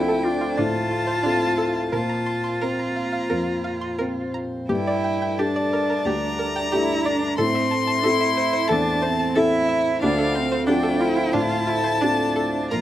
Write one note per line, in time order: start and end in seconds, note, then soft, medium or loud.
0.00 1.95 D2 medium
0.00 0.54 F3 soft
0.00 4.69 F3 medium
0.00 1.89 A3 medium
0.00 0.54 C4 soft
0.00 0.26 E4 medium
0.00 0.54 A4 soft
0.00 1.92 C5 soft
0.00 0.58 G5 medium
0.08 0.18 A4 medium
0.25 0.59 D4 medium
0.25 0.35 F4 medium
0.41 0.51 F4 soft
0.56 1.23 A2 soft
0.56 0.67 D4 medium
0.56 1.91 F4 medium
0.56 1.91 A5 medium
0.91 1.01 F4 medium
1.07 1.17 C5 medium
1.23 1.89 C4 soft
1.23 1.34 D4 medium
1.23 1.89 F4 soft
1.23 1.89 A4 soft
1.58 1.68 A4 medium
1.92 2.59 A#2 soft
1.92 4.70 C4 soft
1.92 4.30 F4 medium
1.92 2.03 A#4 medium
1.92 4.66 C5 soft
1.92 2.63 A5 medium
2.09 2.20 A#5 medium
2.26 2.37 C6 medium
2.44 2.54 C6 medium
2.61 3.26 C4 soft
2.61 3.26 F4 soft
2.61 2.72 A#4 medium
2.61 3.27 C5 soft
2.61 3.99 A#5 medium
2.79 2.89 A#5 medium
2.96 3.06 F5 medium
3.12 3.23 F5 soft
3.30 3.97 F2 soft
3.30 3.40 A#4 medium
3.64 3.75 F5 medium
3.81 3.92 C6 medium
3.99 4.66 C4 soft
3.99 4.66 F4 soft
3.99 4.09 A#4 medium
3.99 4.66 C5 soft
4.34 4.45 A#5 medium
4.69 5.36 G2 soft
4.69 10.00 A3 soft
4.69 7.39 D4 soft
4.69 5.40 E4 medium
4.69 4.80 G4 medium
4.69 7.39 D5 soft
4.69 5.39 G5 medium
4.87 4.98 D5 medium
5.04 5.14 G5 medium
5.22 5.32 G5 medium
5.38 6.02 D4 soft
5.38 6.74 D4 soft
5.38 6.02 G4 soft
5.38 5.49 G4 medium
5.38 6.02 A4 soft
5.38 6.07 A5 medium
5.56 5.66 D5 medium
5.73 5.83 A#4 medium
5.90 6.00 A#4 medium
6.05 6.70 D2 soft
6.05 6.17 G4 medium
6.05 7.37 A#5 medium
6.39 6.49 A#4 medium
6.56 6.66 G5 medium
6.72 7.35 A3 soft
6.72 7.35 D4 soft
6.72 7.07 E4 medium
6.72 6.82 G4 medium
6.72 7.35 G4 soft
7.05 7.39 D4 medium
7.05 7.15 D5 medium
7.38 8.03 A2 medium
7.38 8.07 C4 medium
7.38 10.03 E4 medium
7.38 7.48 A4 medium
7.38 12.70 C5 medium
7.38 8.70 C6 loud
7.55 7.65 E5 medium
7.71 7.81 A5 medium
7.87 7.98 A5 medium
8.03 8.66 C4 soft
8.03 8.67 E4 medium
8.03 8.73 E4 medium
8.03 8.14 A4 medium
8.03 8.67 A4 medium
8.20 8.31 E5 medium
8.37 8.47 C5 medium
8.53 8.63 C5 medium
8.68 9.34 E2 medium
8.68 9.05 D4 medium
8.68 8.79 A4 medium
8.68 9.37 A5 loud
9.02 9.38 C4 medium
9.02 9.12 C5 medium
9.19 9.29 A5 medium
9.35 9.98 C4 medium
9.35 9.98 E4 medium
9.35 10.02 E4 medium
9.35 9.46 A4 medium
9.35 9.99 A4 medium
9.35 10.00 E5 medium
9.69 9.79 E5 medium
10.01 10.66 D2 medium
10.01 12.81 F3 medium
10.01 12.66 A3 medium
10.01 10.12 D4 medium
10.01 10.37 D4 medium
10.01 10.66 F5 medium
10.18 10.28 A4 medium
10.35 10.70 C4 medium
10.35 10.45 C5 medium
10.52 10.61 C5 medium
10.67 11.30 F3 soft
10.67 11.30 C4 soft
10.67 10.77 D4 medium
10.67 11.02 D4 medium
10.67 11.30 A4 medium
10.67 11.35 G5 medium
10.83 10.93 A4 medium
11.00 11.36 E4 medium
11.00 11.10 F4 medium
11.16 11.26 F4 medium
11.33 11.99 A2 soft
11.33 11.43 D4 medium
11.33 11.69 F4 medium
11.33 12.70 A5 loud
11.67 12.03 E4 medium
11.67 11.77 F4 medium
11.84 11.94 C5 medium
12.01 12.67 C4 soft
12.01 12.11 D4 medium
12.01 12.73 D4 medium
12.01 12.68 F4 soft
12.01 12.68 A4 soft
12.36 12.46 A4 medium
12.71 12.81 A#1 soft
12.71 12.81 C4 soft
12.71 12.81 F4 medium
12.71 12.81 A#4 medium
12.71 12.81 C5 soft
12.71 12.81 A#5 medium